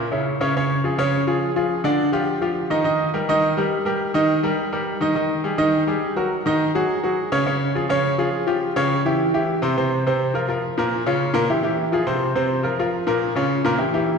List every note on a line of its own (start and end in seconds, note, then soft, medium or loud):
0.12 0.35 C#3 medium
0.12 0.35 C#4 medium
0.12 0.35 E4 medium
0.41 0.52 C#3 medium
0.41 0.52 C#4 medium
0.41 0.52 C#5 medium
0.56 0.79 C#3 medium
0.56 0.79 C#4 medium
0.56 0.79 C#5 medium
0.84 0.95 F3 medium
0.84 0.95 F4 medium
0.84 0.96 G#4 medium
0.98 1.21 C#3 medium
0.98 1.22 C#4 medium
0.98 1.22 C#5 medium
1.27 1.50 F3 medium
1.27 1.50 F4 medium
1.27 1.51 G#4 medium
1.56 1.79 F3 medium
1.56 1.79 F4 medium
1.56 1.79 G#4 medium
1.84 2.08 D3 medium
1.84 2.08 D4 medium
1.84 2.08 D5 medium
2.12 2.36 F3 medium
2.12 2.37 F4 medium
2.12 2.36 G4 medium
2.41 2.65 F3 medium
2.41 2.65 F4 medium
2.41 2.65 G4 medium
2.70 2.82 D#3 medium
2.70 2.82 D#4 medium
2.70 2.82 D#5 medium
2.84 3.08 D#3 medium
2.84 3.08 D#4 medium
2.84 3.09 D#5 medium
3.14 3.25 G3 medium
3.14 3.26 G4 medium
3.14 3.26 A#4 medium
3.29 3.52 D#3 medium
3.29 3.52 D#4 medium
3.29 3.52 D#5 medium
3.57 3.81 G3 medium
3.57 3.81 G4 medium
3.57 3.81 A#4 medium
3.85 4.09 G3 medium
3.85 4.10 G4 medium
3.85 4.09 A#4 medium
4.14 4.38 D#3 medium
4.14 4.38 D#4 medium
4.14 4.38 D#5 medium
4.43 4.67 G3 medium
4.43 4.67 G4 medium
4.43 4.67 A#4 medium
4.72 4.96 G3 medium
4.72 4.96 G4 medium
4.72 4.96 A#4 medium
5.01 5.13 D#3 medium
5.01 5.13 D#4 medium
5.01 5.13 D#5 medium
5.15 5.39 D#3 medium
5.15 5.39 D#4 medium
5.15 5.39 D#5 medium
5.44 5.56 G3 medium
5.44 5.56 G4 medium
5.44 5.56 G#4 medium
5.58 5.82 D#3 medium
5.58 5.82 D#4 medium
5.58 5.82 D#5 medium
5.87 6.11 G3 medium
5.87 6.11 G4 medium
5.87 6.11 G#4 medium
6.16 6.40 F#3 medium
6.16 6.40 F#4 medium
6.16 6.40 A#4 medium
6.46 6.69 D#3 medium
6.46 6.70 D#4 medium
6.46 6.70 D#5 medium
6.75 6.98 F#3 medium
6.75 6.98 F#4 medium
6.75 6.98 G#4 medium
7.04 7.27 F#3 medium
7.04 7.27 F#4 medium
7.04 7.27 G#4 medium
7.32 7.44 C#3 medium
7.32 7.44 C#4 medium
7.32 7.44 C#5 medium
7.46 7.70 C#3 medium
7.46 7.70 C#4 medium
7.46 7.70 C#5 medium
7.75 7.87 F3 medium
7.75 7.87 F4 medium
7.75 7.87 G#4 medium
7.89 8.13 C#3 medium
7.89 8.13 C#4 medium
7.89 8.13 C#5 medium
8.18 8.42 F3 medium
8.18 8.42 F4 medium
8.18 8.42 G#4 medium
8.47 8.70 F3 medium
8.47 8.71 F4 medium
8.47 8.71 G4 medium
8.76 8.99 C#3 loud
8.76 9.00 C#4 medium
8.76 9.00 C#5 medium
9.05 9.28 E3 medium
9.05 9.29 E4 medium
9.05 9.29 G4 medium
9.34 9.57 E3 medium
9.34 9.57 E4 medium
9.34 9.57 G4 medium
9.62 9.74 C3 medium
9.62 9.74 C4 medium
9.62 9.74 C5 medium
9.77 10.01 C3 medium
9.77 10.01 C4 medium
9.77 10.01 C5 medium
10.06 10.30 C3 medium
10.06 10.30 C4 medium
10.06 10.30 C5 medium
10.34 10.46 F3 medium
10.34 10.46 F4 medium
10.34 10.46 A#4 medium
10.48 10.72 F3 medium
10.48 10.72 F4 medium
10.48 10.73 A#4 medium
10.78 11.01 A#2 medium
10.78 11.01 A#3 medium
10.78 11.02 A#4 medium
11.06 11.30 C#3 medium
11.06 11.30 C#4 medium
11.06 11.30 F4 medium
11.34 11.46 A#2 medium
11.34 11.46 A#3 loud
11.34 11.46 A#4 medium
11.49 11.61 E3 medium
11.49 11.61 E4 medium
11.49 11.61 G4 medium
11.63 11.87 E3 medium
11.63 11.87 E4 medium
11.63 11.87 G4 medium
11.92 12.04 F3 medium
11.92 12.04 F4 medium
11.92 12.05 G#4 medium
12.07 12.30 C3 medium
12.07 12.30 C4 medium
12.07 12.30 C5 medium
12.35 12.59 C3 medium
12.35 12.59 C4 medium
12.35 12.59 C5 medium
12.63 12.75 F3 medium
12.63 12.75 F4 medium
12.63 12.76 A#4 medium
12.79 13.03 F3 medium
12.79 13.03 F4 medium
12.79 13.03 A#4 medium
13.07 13.31 A#2 medium
13.07 13.31 A#3 medium
13.07 13.31 A#4 medium
13.35 13.59 C#3 medium
13.35 13.60 C#4 medium
13.35 13.60 F4 medium
13.65 13.77 A#2 loud
13.65 13.77 A#3 medium
13.65 13.77 A#4 medium
13.78 13.90 E3 medium
13.78 13.91 E4 medium
13.78 13.91 G4 medium
13.94 14.17 E3 medium
13.94 14.17 E4 medium
13.94 14.18 G4 medium